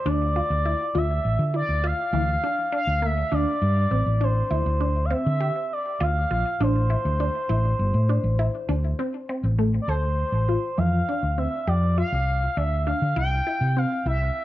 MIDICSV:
0, 0, Header, 1, 4, 480
1, 0, Start_track
1, 0, Key_signature, -1, "minor"
1, 0, Tempo, 596421
1, 45, Time_signature, 11, 3, 24, 8
1, 11625, End_track
2, 0, Start_track
2, 0, Title_t, "Analog synth lead"
2, 0, Program_c, 0, 81
2, 64, Note_on_c, 0, 74, 109
2, 787, Note_on_c, 0, 76, 95
2, 799, Note_off_c, 0, 74, 0
2, 1255, Note_off_c, 0, 76, 0
2, 1258, Note_on_c, 0, 74, 92
2, 1502, Note_on_c, 0, 77, 112
2, 1514, Note_off_c, 0, 74, 0
2, 2212, Note_off_c, 0, 77, 0
2, 2220, Note_on_c, 0, 77, 106
2, 2460, Note_on_c, 0, 76, 104
2, 2472, Note_off_c, 0, 77, 0
2, 2691, Note_on_c, 0, 74, 117
2, 2703, Note_off_c, 0, 76, 0
2, 3411, Note_on_c, 0, 72, 92
2, 3423, Note_off_c, 0, 74, 0
2, 4064, Note_on_c, 0, 77, 71
2, 4076, Note_off_c, 0, 72, 0
2, 4128, Note_on_c, 0, 76, 104
2, 4140, Note_off_c, 0, 77, 0
2, 4609, Note_on_c, 0, 74, 87
2, 4621, Note_off_c, 0, 76, 0
2, 4850, Note_on_c, 0, 77, 97
2, 4862, Note_off_c, 0, 74, 0
2, 5329, Note_on_c, 0, 72, 94
2, 5341, Note_off_c, 0, 77, 0
2, 7483, Note_off_c, 0, 72, 0
2, 7900, Note_on_c, 0, 74, 64
2, 7959, Note_on_c, 0, 72, 95
2, 7971, Note_off_c, 0, 74, 0
2, 8677, Note_on_c, 0, 77, 93
2, 8689, Note_off_c, 0, 72, 0
2, 9161, Note_on_c, 0, 76, 89
2, 9173, Note_off_c, 0, 77, 0
2, 9402, Note_on_c, 0, 74, 88
2, 9414, Note_off_c, 0, 76, 0
2, 9634, Note_off_c, 0, 74, 0
2, 9639, Note_on_c, 0, 77, 105
2, 10114, Note_on_c, 0, 76, 106
2, 10126, Note_off_c, 0, 77, 0
2, 10360, Note_on_c, 0, 77, 94
2, 10372, Note_off_c, 0, 76, 0
2, 10597, Note_off_c, 0, 77, 0
2, 10602, Note_on_c, 0, 79, 119
2, 11090, Note_on_c, 0, 77, 97
2, 11102, Note_off_c, 0, 79, 0
2, 11323, Note_off_c, 0, 77, 0
2, 11328, Note_on_c, 0, 76, 96
2, 11625, Note_off_c, 0, 76, 0
2, 11625, End_track
3, 0, Start_track
3, 0, Title_t, "Synth arpeggio sound"
3, 0, Program_c, 1, 84
3, 45, Note_on_c, 1, 62, 94
3, 169, Note_off_c, 1, 62, 0
3, 288, Note_on_c, 1, 65, 73
3, 411, Note_off_c, 1, 65, 0
3, 525, Note_on_c, 1, 64, 76
3, 649, Note_off_c, 1, 64, 0
3, 763, Note_on_c, 1, 65, 76
3, 1012, Note_off_c, 1, 65, 0
3, 1240, Note_on_c, 1, 64, 73
3, 1365, Note_off_c, 1, 64, 0
3, 1480, Note_on_c, 1, 65, 93
3, 1605, Note_off_c, 1, 65, 0
3, 1719, Note_on_c, 1, 52, 90
3, 1844, Note_off_c, 1, 52, 0
3, 1962, Note_on_c, 1, 62, 87
3, 2087, Note_off_c, 1, 62, 0
3, 2194, Note_on_c, 1, 62, 90
3, 2321, Note_off_c, 1, 62, 0
3, 2434, Note_on_c, 1, 58, 84
3, 2560, Note_off_c, 1, 58, 0
3, 2671, Note_on_c, 1, 62, 81
3, 2923, Note_off_c, 1, 62, 0
3, 3149, Note_on_c, 1, 60, 75
3, 3277, Note_off_c, 1, 60, 0
3, 3389, Note_on_c, 1, 62, 82
3, 3516, Note_off_c, 1, 62, 0
3, 3627, Note_on_c, 1, 64, 77
3, 3755, Note_off_c, 1, 64, 0
3, 3867, Note_on_c, 1, 62, 76
3, 3995, Note_off_c, 1, 62, 0
3, 4107, Note_on_c, 1, 60, 89
3, 4235, Note_off_c, 1, 60, 0
3, 4349, Note_on_c, 1, 67, 84
3, 4600, Note_off_c, 1, 67, 0
3, 4831, Note_on_c, 1, 65, 90
3, 4957, Note_off_c, 1, 65, 0
3, 5075, Note_on_c, 1, 65, 82
3, 5201, Note_off_c, 1, 65, 0
3, 5316, Note_on_c, 1, 62, 92
3, 5441, Note_off_c, 1, 62, 0
3, 5553, Note_on_c, 1, 64, 75
3, 5679, Note_off_c, 1, 64, 0
3, 5796, Note_on_c, 1, 62, 81
3, 5921, Note_off_c, 1, 62, 0
3, 6031, Note_on_c, 1, 64, 86
3, 6282, Note_off_c, 1, 64, 0
3, 6514, Note_on_c, 1, 62, 79
3, 6640, Note_off_c, 1, 62, 0
3, 6753, Note_on_c, 1, 64, 84
3, 6878, Note_off_c, 1, 64, 0
3, 6990, Note_on_c, 1, 62, 86
3, 7117, Note_off_c, 1, 62, 0
3, 7234, Note_on_c, 1, 60, 87
3, 7359, Note_off_c, 1, 60, 0
3, 7478, Note_on_c, 1, 60, 79
3, 7602, Note_off_c, 1, 60, 0
3, 7714, Note_on_c, 1, 57, 81
3, 7840, Note_off_c, 1, 57, 0
3, 7958, Note_on_c, 1, 69, 80
3, 8207, Note_off_c, 1, 69, 0
3, 8440, Note_on_c, 1, 65, 68
3, 8564, Note_off_c, 1, 65, 0
3, 8673, Note_on_c, 1, 52, 78
3, 8799, Note_off_c, 1, 52, 0
3, 8922, Note_on_c, 1, 62, 74
3, 9046, Note_off_c, 1, 62, 0
3, 9158, Note_on_c, 1, 60, 79
3, 9282, Note_off_c, 1, 60, 0
3, 9395, Note_on_c, 1, 67, 84
3, 9520, Note_off_c, 1, 67, 0
3, 9639, Note_on_c, 1, 65, 77
3, 9888, Note_off_c, 1, 65, 0
3, 10118, Note_on_c, 1, 62, 82
3, 10243, Note_off_c, 1, 62, 0
3, 10358, Note_on_c, 1, 62, 80
3, 10482, Note_off_c, 1, 62, 0
3, 10594, Note_on_c, 1, 64, 89
3, 10720, Note_off_c, 1, 64, 0
3, 10838, Note_on_c, 1, 64, 74
3, 10963, Note_off_c, 1, 64, 0
3, 11078, Note_on_c, 1, 60, 75
3, 11203, Note_off_c, 1, 60, 0
3, 11319, Note_on_c, 1, 64, 73
3, 11568, Note_off_c, 1, 64, 0
3, 11625, End_track
4, 0, Start_track
4, 0, Title_t, "Fingered electric bass"
4, 0, Program_c, 2, 33
4, 42, Note_on_c, 2, 38, 97
4, 320, Note_off_c, 2, 38, 0
4, 403, Note_on_c, 2, 38, 77
4, 588, Note_off_c, 2, 38, 0
4, 765, Note_on_c, 2, 38, 101
4, 949, Note_off_c, 2, 38, 0
4, 1005, Note_on_c, 2, 33, 77
4, 1096, Note_off_c, 2, 33, 0
4, 1119, Note_on_c, 2, 50, 80
4, 1305, Note_off_c, 2, 50, 0
4, 1360, Note_on_c, 2, 38, 75
4, 1545, Note_off_c, 2, 38, 0
4, 1714, Note_on_c, 2, 38, 94
4, 1902, Note_off_c, 2, 38, 0
4, 2314, Note_on_c, 2, 38, 80
4, 2594, Note_off_c, 2, 38, 0
4, 2674, Note_on_c, 2, 38, 101
4, 2769, Note_off_c, 2, 38, 0
4, 2912, Note_on_c, 2, 43, 90
4, 3100, Note_off_c, 2, 43, 0
4, 3149, Note_on_c, 2, 33, 86
4, 3246, Note_off_c, 2, 33, 0
4, 3272, Note_on_c, 2, 33, 74
4, 3552, Note_off_c, 2, 33, 0
4, 3629, Note_on_c, 2, 38, 93
4, 3726, Note_off_c, 2, 38, 0
4, 3749, Note_on_c, 2, 38, 92
4, 4122, Note_off_c, 2, 38, 0
4, 4235, Note_on_c, 2, 50, 86
4, 4421, Note_off_c, 2, 50, 0
4, 4834, Note_on_c, 2, 38, 99
4, 5020, Note_off_c, 2, 38, 0
4, 5077, Note_on_c, 2, 34, 76
4, 5170, Note_off_c, 2, 34, 0
4, 5315, Note_on_c, 2, 33, 107
4, 5593, Note_off_c, 2, 33, 0
4, 5675, Note_on_c, 2, 38, 90
4, 5861, Note_off_c, 2, 38, 0
4, 6034, Note_on_c, 2, 33, 100
4, 6220, Note_off_c, 2, 33, 0
4, 6271, Note_on_c, 2, 31, 87
4, 6366, Note_off_c, 2, 31, 0
4, 6389, Note_on_c, 2, 45, 79
4, 6577, Note_off_c, 2, 45, 0
4, 6629, Note_on_c, 2, 33, 78
4, 6817, Note_off_c, 2, 33, 0
4, 6992, Note_on_c, 2, 38, 94
4, 7178, Note_off_c, 2, 38, 0
4, 7592, Note_on_c, 2, 33, 73
4, 7871, Note_off_c, 2, 33, 0
4, 7951, Note_on_c, 2, 38, 81
4, 8230, Note_off_c, 2, 38, 0
4, 8308, Note_on_c, 2, 33, 74
4, 8496, Note_off_c, 2, 33, 0
4, 8678, Note_on_c, 2, 41, 81
4, 8863, Note_off_c, 2, 41, 0
4, 9035, Note_on_c, 2, 38, 67
4, 9221, Note_off_c, 2, 38, 0
4, 9394, Note_on_c, 2, 41, 81
4, 9672, Note_off_c, 2, 41, 0
4, 9757, Note_on_c, 2, 36, 78
4, 10034, Note_off_c, 2, 36, 0
4, 10117, Note_on_c, 2, 38, 86
4, 10395, Note_off_c, 2, 38, 0
4, 10478, Note_on_c, 2, 50, 74
4, 10570, Note_off_c, 2, 50, 0
4, 10595, Note_on_c, 2, 36, 88
4, 10781, Note_off_c, 2, 36, 0
4, 10951, Note_on_c, 2, 48, 75
4, 11139, Note_off_c, 2, 48, 0
4, 11312, Note_on_c, 2, 36, 84
4, 11499, Note_off_c, 2, 36, 0
4, 11625, End_track
0, 0, End_of_file